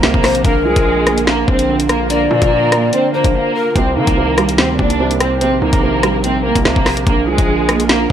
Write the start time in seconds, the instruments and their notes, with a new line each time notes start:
Already playing: felt piano C3 D#3 G3 A#3, analog synth pad D#3 C4 G4 A#4
0.03 808-style bass C2, felt piano C3, violin section A#3 A#4, snare
0.14 808-style bass A#1, kick
0.24 pan flute C5, cross-stick, snare, open hi-hat
0.35 closed hi-hat
0.45 808-style bass A#1, analog synth pad D3 A#3 F4 A#4, felt piano D3, violin section A#3 A#4, pan flute A#4, kick, closed hi-hat
0.65 808-style bass C2, felt piano F3, violin section G#3 G#4
0.76 808-style bass A#1, kick, closed hi-hat
0.86 felt piano D3
1.07 felt piano A#3, cross-stick, closed hi-hat
1.18 closed hi-hat
1.27 felt piano D3, violin section A#3 A#4, snare
1.48 808-style bass A#1, violin section C4 C5, felt piano D4, kick
1.59 closed hi-hat
1.69 felt piano D3
1.80 closed hi-hat
1.89 violin section A#3 A#4, cross-stick, closed hi-hat
2.10 felt piano D3, violin section A#3 A#4, pan flute D5, closed hi-hat
2.31 808-style bass A#2, felt piano F3, violin section A#3 A#4
2.42 808-style bass A#2, kick, closed hi-hat
2.51 felt piano D3
2.72 felt piano A#3, cross-stick, closed hi-hat
2.93 felt piano D3, violin section C4 C5, closed hi-hat
3.13 violin section A#3 A#4, felt piano D4, pan flute C5
3.24 808-style bass A#1, kick, closed hi-hat
3.34 felt piano D3, violin section A#3 A#4
3.55 pan flute A#4
3.75 808-style bass C2, felt piano C3, analog synth pad D#3 C4 G4 A#4, violin section C4 C5, kick, closed hi-hat
3.96 808-style bass D#3, felt piano D#3, violin section A#3 A#4
4.07 808-style bass C2, kick, closed hi-hat
4.17 felt piano C3
4.38 felt piano G3, cross-stick, closed hi-hat
4.49 closed hi-hat
4.58 808-style bass D2, felt piano C3, violin section C4 C5, snare
4.79 808-style bass C2, felt piano A#3, violin section D4 D5, kick
4.90 closed hi-hat
5.00 felt piano C3
5.11 closed hi-hat
5.20 violin section C4 C5, cross-stick, closed hi-hat
5.41 808-style bass A#1, felt piano C3, violin section C4 C5, closed hi-hat
5.62 808-style bass C2, felt piano D#3, violin section A#3 A#4
5.73 808-style bass A#1, kick, closed hi-hat
5.83 felt piano C3
6.03 felt piano G3, cross-stick, closed hi-hat
6.24 felt piano C3, violin section C4 C5, closed hi-hat
6.45 violin section A#3 A#4, felt piano A#3
6.55 808-style bass C2, kick, closed hi-hat
6.65 808-style bass C2, felt piano C3, violin section A#3 A#4, snare
6.76 808-style bass A#1, kick
6.86 cross-stick, snare, open hi-hat
6.97 closed hi-hat
7.07 808-style bass A#1, analog synth pad D3 A#3 F4, felt piano D3, violin section A#3 A#4, kick, closed hi-hat
7.27 808-style bass C2, felt piano F3, violin section G#3 G#4
7.38 808-style bass A#1, kick, closed hi-hat
7.48 felt piano D3
7.69 felt piano A#3, cross-stick, closed hi-hat
7.80 closed hi-hat
7.89 felt piano D3, violin section A#3 A#4, snare